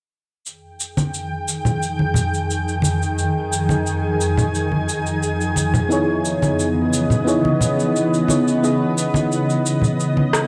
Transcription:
0.45 ambient pad F2 D#3 G#4 G5, cabasa
0.80 cabasa
0.97 high conga, cabasa
1.14 cabasa
1.48 cabasa
1.65 low conga, cabasa
1.83 cabasa
1.99 high conga
2.14 low conga, cabasa
2.34 cabasa
2.51 cabasa
2.68 cabasa
2.82 high conga, cabasa
3.02 cabasa
3.17 ambient pad G#5, cabasa
3.53 cabasa
3.69 high conga, cabasa
3.87 cabasa
4.21 cabasa
4.38 low conga, cabasa
4.55 cabasa
4.72 high conga
4.89 cabasa
5.07 cabasa
5.23 cabasa
5.41 cabasa
5.56 high conga, cabasa
5.74 low conga, cabasa
5.89 ambient pad C#3 E3 B3 D#5, fm electric piano B3 D#4 E4 G#4 C#5, cabasa
6.25 cabasa
6.42 high conga, cabasa
6.59 cabasa
6.93 cabasa
7.10 low conga, cabasa
7.25 fm electric piano B3 D#4 E4 G#4 C#5, cabasa
7.45 high conga
7.61 low conga, cabasa
7.80 cabasa
7.96 cabasa
8.14 cabasa
8.28 fm electric piano B3 D#4 E4 G#4 C#5, high conga, cabasa
8.48 cabasa
8.63 fm electric piano B3 D#4 E4 G#4 D#5, ambient pad D#5, cabasa
8.98 cabasa
9.14 high conga, cabasa
9.32 cabasa
9.50 cabasa
9.66 cabasa
9.82 low conga, cabasa
10.00 cabasa
10.17 high conga
10.33 cross-stick, cabasa

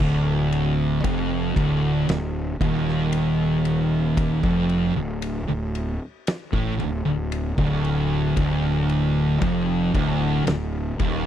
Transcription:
0.00 fingered electric bass D1, distorted electric guitar D2, kick
0.52 ride
1.04 fingered electric bass F1, distorted electric guitar F2, kick, ride
1.56 fingered electric bass D1, distorted electric guitar D2, kick, ride
2.08 fingered electric bass D1, distorted electric guitar D2, snare, ride
2.60 fingered electric bass D#1, distorted electric guitar D#2, kick, ride
2.88 snare
3.12 ride
3.65 ride
4.17 kick, ride
4.43 fingered electric bass F1, distorted electric guitar F2, kick
4.69 ride
4.96 fingered electric bass D1, distorted electric guitar D2
5.22 ride
5.49 fingered electric bass D1, distorted electric guitar D2
5.75 ride
6.27 snare, ride
6.53 fingered electric bass A1, distorted electric guitar A2, kick
6.79 fingered electric bass D1, distorted electric guitar D2, ride
7.06 fingered electric bass D1, distorted electric guitar D2
7.32 ride
7.58 fingered electric bass D1, distorted electric guitar D2, kick
7.85 ride
8.36 fingered electric bass D1, distorted electric guitar D2, kick, ride
8.89 ride
9.41 fingered electric bass F1, distorted electric guitar F2, kick, ride
9.94 fingered electric bass D1, distorted electric guitar D2, kick, ride
10.46 fingered electric bass D1, distorted electric guitar D2, snare, ride
10.99 fingered electric bass D#1, distorted electric guitar D#2, kick, ride

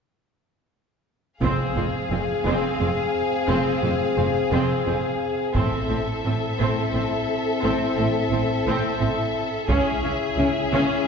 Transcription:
1.41 double bass section F1, cello section F2, french horn section C4 G#4, viola section C4, violin section G#4 F5, taiko
1.76 double bass section F1, cello section F2, viola section C4
2.11 double bass section F1, cello section F2, viola section C4
2.45 double bass section F1, cello section F2, viola section C4
2.79 double bass section F1, cello section F2, viola section C4
3.48 double bass section F1, cello section F2, viola section C4
3.83 double bass section F1, cello section F2, viola section C4
4.17 double bass section F1, cello section F2, viola section C4
4.52 double bass section F1, cello section F2, viola section C4
4.86 double bass section F1, cello section F2, viola section C4
5.55 double bass section A1, cello section A2, viola section C4, french horn section C4 E4, violin section A4 E5, taiko
5.89 double bass section A1, cello section A2, viola section C4
6.24 double bass section A1, cello section A2, viola section C4
6.59 double bass section A1, cello section A2, viola section C4
6.93 double bass section A1, cello section A2, viola section C4
7.62 double bass section A1, cello section A2, viola section C4
7.97 double bass section A1, cello section A2, viola section C4
8.31 double bass section A1, cello section A2, viola section C4
8.66 double bass section A1, cello section A2, viola section C4
9.00 double bass section A1, cello section A2, viola section C4
9.68 double bass section C#2, cello section C#3, french horn section C#4 E4, viola section C#4, violin section G#4 E5, taiko
10.03 double bass section C#2, cello section C#3, viola section C#4
10.38 double bass section C#2, cello section C#3, viola section C#4
10.73 double bass section C#2, cello section C#3, viola section C#4

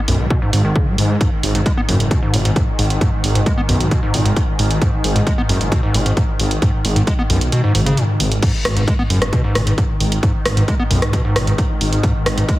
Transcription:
Already playing: synth drone G#2 D#3
0.08 detuned saw bass B1, acid bass F#2, open hi-hat
0.30 acid bass B2, kick
0.42 acid bass G#2
0.53 detuned saw bass G#1, acid bass G#2, open hi-hat
0.65 acid bass D#3
0.76 acid bass C#3, kick
0.87 acid bass G#3
0.98 detuned saw bass G#2, open hi-hat
1.21 acid bass G#2, kick, closed hi-hat
1.43 detuned saw bass G#1, open hi-hat
1.55 acid bass G#2, closed hi-hat
1.66 acid bass G#3, kick, closed hi-hat
1.77 acid bass B3
1.88 detuned saw bass F#1, acid bass F#2, open hi-hat
2.00 closed hi-hat
2.11 acid bass B2, kick, closed hi-hat
2.23 acid bass G#2
2.34 detuned saw bass G#1, acid bass B2, open hi-hat
2.45 acid bass G#2, closed hi-hat
2.56 acid bass G#2, kick, closed hi-hat
2.79 detuned saw bass G#1, open hi-hat
2.90 closed hi-hat
3.01 acid bass G#2, kick, closed hi-hat
3.24 detuned saw bass G#1, open hi-hat
3.35 acid bass G#2, closed hi-hat
3.46 acid bass G#3, kick, closed hi-hat
3.58 acid bass B3
3.69 detuned saw bass B1, acid bass F#2, open hi-hat
3.80 closed hi-hat
3.91 acid bass B2, kick, closed hi-hat
4.03 acid bass G#2
4.14 detuned saw bass G#1, acid bass B2, open hi-hat
4.25 acid bass G#2, closed hi-hat
4.36 acid bass G#2, kick, closed hi-hat
4.59 detuned saw bass G#1, open hi-hat
4.71 closed hi-hat
4.81 acid bass G#2, kick, closed hi-hat
5.04 detuned saw bass G#1, open hi-hat
5.15 acid bass G#2, closed hi-hat
5.26 acid bass G#3, kick, closed hi-hat
5.38 acid bass B3
5.49 detuned saw bass F#1, acid bass F#2, open hi-hat
5.61 closed hi-hat
5.72 acid bass B2, kick, closed hi-hat
5.83 acid bass G#2
5.94 detuned saw bass G#1, acid bass B2, open hi-hat
6.06 acid bass G#2, closed hi-hat
6.17 acid bass G#2, kick, closed hi-hat
6.40 detuned saw bass G#1, open hi-hat
6.51 closed hi-hat
6.62 acid bass G#2, kick, closed hi-hat
6.85 detuned saw bass G#1, open hi-hat
6.96 acid bass G#2, closed hi-hat
7.07 acid bass G#3, kick, closed hi-hat
7.19 acid bass B3
7.30 detuned saw bass B1, acid bass F#2, open hi-hat
7.41 closed hi-hat
7.52 acid bass B2, closed hi-hat
7.64 acid bass G#2
7.75 detuned saw bass G#1, acid bass G#2, open hi-hat
7.86 acid bass C#3, closed hi-hat
7.97 acid bass A2, closed hi-hat
8.20 detuned saw bass G#1, open hi-hat
8.32 closed hi-hat
8.42 acid bass G#2, synth drone G#2 D#3, kick, closed hi-hat, crash
8.65 detuned saw bass G#1, cross-stick, open hi-hat
8.77 acid bass G#2, closed hi-hat
8.88 acid bass G#3, kick, closed hi-hat
8.99 acid bass B3
9.10 detuned saw bass F#1, acid bass F#2, open hi-hat
9.22 cross-stick, closed hi-hat
9.33 acid bass B2, kick, closed hi-hat
9.44 acid bass G#2
9.55 detuned saw bass G#1, acid bass B2, cross-stick, open hi-hat
9.67 acid bass G#2, closed hi-hat
9.78 acid bass G#2, kick, closed hi-hat
10.00 detuned saw bass G#1, open hi-hat
10.12 closed hi-hat
10.23 acid bass G#2, kick, closed hi-hat
10.45 detuned saw bass G#1, cross-stick, open hi-hat
10.57 acid bass G#2, closed hi-hat
10.68 acid bass G#3, kick, closed hi-hat
10.80 acid bass B3
10.91 detuned saw bass B1, acid bass F#2, open hi-hat
11.02 cross-stick, closed hi-hat
11.13 acid bass B2, kick, closed hi-hat
11.25 acid bass G#2
11.36 detuned saw bass G#1, acid bass B2, cross-stick, open hi-hat
11.47 acid bass G#2, closed hi-hat
11.58 acid bass G#2, kick, closed hi-hat
11.81 detuned saw bass G#1, open hi-hat
11.93 closed hi-hat
12.03 acid bass G#2, kick, closed hi-hat
12.26 detuned saw bass G#1, cross-stick, open hi-hat
12.37 acid bass G#2, closed hi-hat
12.48 acid bass G#3, kick, closed hi-hat

